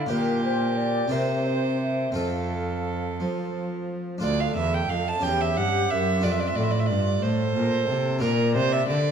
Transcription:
Already playing: flute F5
0.06 harpsichord D4 G4, flute A#4
0.10 cello A#2, harpsichord A#2, violin G4
0.44 flute C5
0.77 flute D5
1.08 harpsichord C4 G4 A#4
1.12 cello C3, harpsichord C3, violin C5, flute E5
1.46 flute C5
1.81 flute E5
2.12 harpsichord C4 F4 A4, flute F5
2.16 cello F2, harpsichord F2, violin A4
3.20 cello F3, harpsichord F3
4.18 cello D2, harpsichord D4 F4 A4
4.23 harpsichord D2, flute A4, violin D5
4.40 violin F5
4.56 harpsichord E2, cello E2, violin E5
4.74 violin G5
4.89 cello F2, harpsichord F2, violin F5
5.08 violin A5
5.20 cello E2, harpsichord C#4 G4, violin G5
5.24 harpsichord E2, flute G4
5.41 violin E5
5.57 cello G2, harpsichord G2, violin F#5
5.91 cello F#2, harpsichord F#2, violin E5
6.20 cello F2, harpsichord D4 F4 A4, violin D5
6.24 harpsichord F2, flute F4
6.32 violin E5
6.40 violin D5
6.48 violin E5
6.56 cello A2, harpsichord A2, violin D5
6.63 violin E5
6.71 violin D5
6.79 violin E5
6.86 cello G2, violin D5
6.91 harpsichord G2
7.22 cello A2, harpsichord A2, flute A4, violin C5
7.56 cello A#2, harpsichord A#2
7.89 cello C3, harpsichord C3
8.19 cello A#2, harpsichord D4 F4 A#4, violin A#4, flute D5
8.23 harpsichord A#2
8.55 cello C3, harpsichord C3, violin C5
8.73 violin E5
8.88 cello D3, harpsichord D3, violin D5

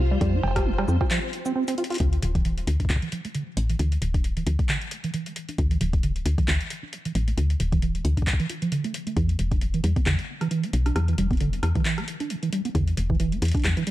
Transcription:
Already playing: string machine F4 G4 C5
0.00 fm bass C2
0.11 acid bass G3
0.21 fm bass F2, acid bass G3, kick, closed hi-hat
0.34 acid bass F4
0.43 fm bass F1, cowbell
0.48 cowbell
0.51 cowbell
0.56 acid bass G4, kick, cross-stick, closed hi-hat, cowbell
0.58 cowbell
0.63 acid bass F3, cowbell
0.78 acid bass G3, cross-stick, cowbell
0.88 fm bass F2, acid bass C4, cabasa
1.01 acid bass F4, kick, cross-stick, cowbell
1.11 acid bass F3, clap, closed hi-hat
1.33 closed hi-hat
1.46 acid bass C4, cabasa
1.55 acid bass C4
1.68 acid bass C4, closed hi-hat, cabasa
1.78 acid bass F4, closed hi-hat
1.84 closed hi-hat
1.90 acid bass F4, closed hi-hat
1.92 closed hi-hat
1.94 closed hi-hat
1.96 closed hi-hat
1.98 closed hi-hat
2.00 fm bass D2, acid bass D3, kick, closed hi-hat
2.13 closed hi-hat
2.23 fm bass D1, closed hi-hat
2.35 acid bass E3, kick, closed hi-hat
2.45 acid bass E3, closed hi-hat
2.58 acid bass A3, closed hi-hat
2.67 fm bass D2, closed hi-hat
2.80 acid bass D4, kick, closed hi-hat
2.85 kick
2.90 fm bass D2, acid bass D3, kick, clap, closed hi-hat
2.96 kick
3.02 acid bass E3, closed hi-hat
3.12 acid bass F3, closed hi-hat
3.25 acid bass A3, closed hi-hat
3.35 acid bass D3, closed hi-hat
3.57 fm bass A1, closed hi-hat
3.69 acid bass E3, closed hi-hat
3.79 fm bass D2, acid bass E3, closed hi-hat
3.92 acid bass A3, closed hi-hat
4.02 fm bass D1, closed hi-hat
4.14 acid bass D4, kick, closed hi-hat
4.24 acid bass D3, closed hi-hat
4.37 acid bass E3, closed hi-hat
4.46 fm bass D2, acid bass F3, closed hi-hat
4.59 acid bass A3, kick, closed hi-hat
4.69 acid bass D3, clap, closed hi-hat
4.81 closed hi-hat
4.91 closed hi-hat
5.04 acid bass E3, closed hi-hat
5.14 acid bass E3, closed hi-hat
5.26 acid bass A3, closed hi-hat
5.36 closed hi-hat
5.49 acid bass D4, closed hi-hat
5.58 fm bass D2, kick, closed hi-hat
5.71 acid bass E3, closed hi-hat
5.81 fm bass D1, acid bass F3, closed hi-hat
5.93 acid bass A3, kick, closed hi-hat
6.03 acid bass D3, closed hi-hat
6.16 closed hi-hat
6.26 fm bass D2, closed hi-hat
6.38 acid bass E3, kick, closed hi-hat
6.48 fm bass D2, acid bass E3, clap, closed hi-hat
6.61 acid bass A3, closed hi-hat
6.70 closed hi-hat
6.83 acid bass D4
6.93 acid bass D3, closed hi-hat
7.05 acid bass E3, closed hi-hat
7.15 fm bass A1, acid bass F3, closed hi-hat
7.28 acid bass A3, closed hi-hat
7.38 fm bass D2, acid bass D3, closed hi-hat
7.50 closed hi-hat
7.60 fm bass D1, closed hi-hat
7.72 acid bass E3, kick, closed hi-hat
7.82 acid bass E3, closed hi-hat
7.95 acid bass A3, closed hi-hat
8.05 fm bass D2, closed hi-hat
8.17 acid bass D4, kick, closed hi-hat
8.22 kick
8.27 acid bass D3, kick, clap, closed hi-hat
8.33 kick
8.40 acid bass E3, closed hi-hat
8.49 acid bass F4, closed hi-hat
8.62 acid bass F3, closed hi-hat
8.72 acid bass D3, closed hi-hat
8.84 acid bass A3, closed hi-hat
8.94 closed hi-hat
9.07 acid bass A3, closed hi-hat
9.17 fm bass E2, acid bass E3, kick, closed hi-hat
9.29 acid bass B3, closed hi-hat
9.39 fm bass E1, closed hi-hat
9.52 acid bass D4, kick, closed hi-hat
9.61 acid bass D3, closed hi-hat
9.74 acid bass E3, closed hi-hat
9.84 fm bass E2, acid bass G3, closed hi-hat
9.96 acid bass B3, kick, closed hi-hat
10.06 fm bass E2, acid bass D3, clap, closed hi-hat
10.19 closed hi-hat
10.41 acid bass E3, cross-stick, closed hi-hat
10.51 acid bass E3, closed hi-hat
10.63 acid bass B3, closed hi-hat
10.73 fm bass B1, closed hi-hat
10.86 acid bass D4, cross-stick, closed hi-hat
10.96 fm bass E2, acid bass D3, cross-stick, closed hi-hat
11.08 acid bass E3, closed hi-hat
11.18 fm bass E1, acid bass G3, closed hi-hat
11.31 acid bass B3, kick, closed hi-hat
11.33 closed hi-hat
11.37 closed hi-hat
11.40 acid bass D3, closed hi-hat
11.53 closed hi-hat
11.63 fm bass E2, cross-stick, closed hi-hat
11.75 acid bass E3, kick, closed hi-hat
11.85 acid bass E3, clap, closed hi-hat
11.98 acid bass B3, cross-stick, closed hi-hat
12.08 closed hi-hat
12.20 acid bass D4, closed hi-hat
12.30 acid bass D3, closed hi-hat
12.43 acid bass E3, closed hi-hat
12.52 acid bass G3, closed hi-hat
12.65 acid bass B3, closed hi-hat
12.75 fm bass E2, acid bass D3, kick, closed hi-hat
12.87 closed hi-hat
12.97 fm bass E1, closed hi-hat
13.10 acid bass E3, kick
13.20 acid bass E3, closed hi-hat
13.32 acid bass B3, closed hi-hat
13.42 fm bass E2, closed hi-hat
13.45 closed hi-hat
13.48 closed hi-hat
13.51 closed hi-hat
13.55 acid bass D4, kick, closed hi-hat
13.57 closed hi-hat
13.60 closed hi-hat
13.62 clap, closed hi-hat
13.64 fm bass E2, acid bass D3, closed hi-hat
13.77 acid bass E3, closed hi-hat
13.87 acid bass G3, closed hi-hat

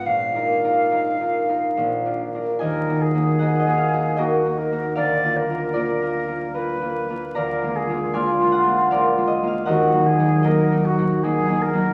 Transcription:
Already playing: harp F4
0.06 harp A#1, flute F5
0.35 harp D#4 F4 A#4
0.64 harp D#4 F4 A#4
0.91 harp D#4 F4 A#4
1.20 harp D#4 F4 A#4
1.49 harp D#4 F4 A#4
1.77 harp A#1
2.06 harp D4 F4 A#4
2.34 harp D4 F4 A#4
2.59 harp D#2 D#5 G#5, flute A#4
2.88 harp A#3 D#4 F#4
3.01 flute G#4
3.15 harp A#3 D#4 F#4
3.39 harp A#3 D#4 F#4 A#4 D#5 F#5
3.59 harp D#5
3.67 harp A#3 D#4 F#4
3.78 harp F5
3.93 harp A#3 D#4 F#4
4.17 harp A#3 D#4 F#4 A#4 D#5, flute F#4
4.45 harp A#3 D#4 F#4
4.57 flute A#4
4.72 harp A#3 D#4 F#4
4.96 harp D2 A#4 D5 F5, flute D5
5.23 harp A#3 F4
5.36 flute A#4
5.50 harp A#3 F4
5.74 harp A#3 F4 A#4 D5
6.02 harp A#3 F4
6.28 harp A#3 F4
6.54 harp A#3 F4, flute B4
6.81 harp A#3 F4
7.10 harp A#3 F4
7.35 harp D2 D5 F5 A#5, flute A#4
7.63 harp G#3 A#3 F4
7.75 flute G#4
7.89 harp G#3 A#3 F4
8.13 harp G#3 A#3 F4 D5 F5 G#5, flute F4
8.41 harp G#3 A#3 F4
8.52 harp F#5
8.67 harp G#3 A#3 F4
8.91 harp G#3 A#3 F4 A#4 D5 F5
9.17 harp G#3 A#3 F4
9.27 harp D#5
9.42 harp G#3 A#3 F4
9.47 harp F5
9.65 harp D#2 A#4 D#5 F#5, flute F#4
9.93 harp F#3 A#3 D#4
10.06 flute G#4
10.19 harp F#3 A#3 D#4
10.43 harp F#3 A#3 D#4 F#4 A#4 D#5, flute A#4
10.72 harp F#3 A#3 D#4
10.85 flute F#4
10.97 harp F#3 A#3 D#4
11.23 harp F#3 A#3 D#4, flute G#4
11.48 harp F#3 A#3 D#4
11.62 flute A#4
11.73 harp F#3 A#3 D#4

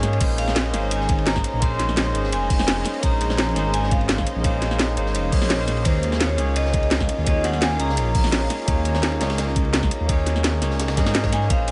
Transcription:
Already playing: detuned saw bass G#2, analog synth pad G#3 C#4 F4, tine electric piano A#3 C#4 D#4 G#4 C#5 D#5
0.03 snare, closed hi-hat
0.13 ride
0.18 detuned saw bass A#1, analog synth pad G#3 C#4 D#4 C5, tine electric piano A#3 C#4 D#4 G#4, kick, closed hi-hat, crash, ride
0.23 tine electric piano C5
0.38 vibraphone F5, closed hi-hat, ride
0.48 snare
0.55 snare, closed hi-hat, ride
0.66 ride
0.71 detuned saw bass G#1, tine electric piano A#3 C#4 D#4, snare, closed hi-hat, ride
0.75 tine electric piano G#4 C5
0.91 vibraphone G#5, closed hi-hat, ride
1.01 snare
1.09 kick, closed hi-hat, ride
1.18 ride
1.27 vibraphone A#5, snare, closed hi-hat, ride
1.36 kick, snare
1.44 closed hi-hat, ride
1.54 detuned saw bass A#1
1.59 tine electric piano A#3 C#4 D#4 G#4, vibraphone C6, kick, closed hi-hat, ride
1.65 tine electric piano C5
1.79 snare, closed hi-hat, ride
1.89 snare
1.97 snare, closed hi-hat, ride
2.12 detuned saw bass G#1, tine electric piano A#3 C#4 D#4 G#4, closed hi-hat, ride
2.18 tine electric piano C5
2.24 snare
2.32 detuned saw bass F1, vibraphone G#5, closed hi-hat, ride
2.50 kick, closed hi-hat, open hi-hat
2.59 snare
2.68 snare, closed hi-hat, ride
2.84 snare, closed hi-hat, ride
2.94 ride
3.00 detuned saw bass A#1, tine electric piano A#3 C#4 D#4 G#4, vibraphone A#5, kick, closed hi-hat, ride
3.06 tine electric piano C5
3.21 closed hi-hat, ride
3.30 snare
3.38 snare, closed hi-hat, ride
3.49 ride
3.53 detuned saw bass G#1, tine electric piano A#3 C#4 D#4 G#4, snare, closed hi-hat, ride
3.59 tine electric piano C5
3.74 vibraphone G#5, closed hi-hat, ride
3.84 snare
3.91 vibraphone F5, kick, closed hi-hat, ride
4.01 ride
4.09 snare, closed hi-hat, ride
4.18 kick, snare
4.26 closed hi-hat, ride
4.36 detuned saw bass A#1
4.42 tine electric piano A#3 C#4 D#4 G#4, kick, closed hi-hat, ride
4.47 tine electric piano C5
4.62 snare, closed hi-hat, ride
4.71 snare
4.79 snare, closed hi-hat, ride
4.96 detuned saw bass G#1, tine electric piano A#3 C#4 D#4 G#4 C5, closed hi-hat, ride
5.06 snare
5.15 detuned saw bass F1, closed hi-hat, ride
5.31 detuned saw bass C2, tine electric piano A#3 C#4 D#4 G#4 C#5, kick, closed hi-hat, open hi-hat
5.42 detuned saw bass A#1, snare
5.50 snare, closed hi-hat, ride
5.58 tine electric piano A#3 C#4 D#4 G#4 C5
5.67 snare, closed hi-hat, ride
5.77 ride
5.83 detuned saw bass D#2, tine electric piano A#3 C#4 D#4 G#4, analog synth pad C#4 F4, vibraphone C5, kick, closed hi-hat, ride
5.88 tine electric piano D#5
6.03 closed hi-hat, ride
6.12 snare
6.20 vibraphone C#5, snare, closed hi-hat, ride
6.29 ride
6.36 detuned saw bass C#2, tine electric piano A#3 C#4 D#4 G#4, snare, closed hi-hat, ride
6.41 tine electric piano C#5
6.56 vibraphone D#5, closed hi-hat, ride
6.65 snare
6.74 kick, closed hi-hat, ride
6.83 ride
6.91 snare, closed hi-hat, ride
7.00 kick, snare
7.09 closed hi-hat, ride
7.18 detuned saw bass D#2
7.24 tine electric piano A#3 C#4 D#4 G#4, vibraphone D#5, kick, closed hi-hat, ride
7.29 tine electric piano C#5
7.44 vibraphone F#5, snare, closed hi-hat, ride
7.53 snare
7.62 vibraphone G#5, snare, closed hi-hat, ride
7.77 detuned saw bass C#2, tine electric piano A#3 C#4 D#4, vibraphone A#5, closed hi-hat, ride
7.81 tine electric piano G#4 C#5
7.89 snare
7.97 detuned saw bass A#1, closed hi-hat, ride
8.15 kick, closed hi-hat, open hi-hat
8.24 snare
8.32 snare, closed hi-hat, ride
8.50 snare, closed hi-hat, ride
8.59 ride
8.65 detuned saw bass D#2, tine electric piano A#3 C#4 D#4 G#4, kick, closed hi-hat, ride
8.70 tine electric piano C#5
8.85 closed hi-hat, ride
8.95 snare
9.03 snare, closed hi-hat, ride
9.12 ride
9.18 detuned saw bass C#2, tine electric piano A#3 C#4 D#4 G#4, snare, closed hi-hat, ride
9.23 tine electric piano C#5
9.30 snare, ride
9.38 snare, closed hi-hat, ride
9.47 snare
9.56 kick, closed hi-hat, ride
9.65 ride
9.73 snare, closed hi-hat, ride
9.83 kick, snare
9.91 closed hi-hat, ride
10.01 detuned saw bass D#2
10.06 tine electric piano A#3 C#4 D#4, kick, closed hi-hat, ride
10.10 tine electric piano G#4 C#5
10.26 snare, closed hi-hat, ride
10.36 snare
10.44 snare, closed hi-hat, ride
10.61 detuned saw bass C#2, tine electric piano A#3 C#4 D#4 G#4 C#5, snare, closed hi-hat, ride
10.71 snare
10.80 snare, closed hi-hat, ride
10.88 snare, ride
10.96 detuned saw bass G#2, tine electric piano A#3 C#4 D#4 G#4 D#5, kick, snare, closed hi-hat, ride
11.06 snare, ride
11.14 detuned saw bass G#2, snare, closed hi-hat, ride
11.23 tine electric piano A#3 C#4 D#4 G#4 C#5, kick, snare, ride
11.32 vibraphone G#5, snare, closed hi-hat, ride
11.41 snare
11.47 detuned saw bass A#1, tine electric piano A#3 C#4 D#4, vibraphone F5, kick, closed hi-hat, ride
11.51 tine electric piano G#4 C5
11.68 vibraphone G#5, closed hi-hat, ride

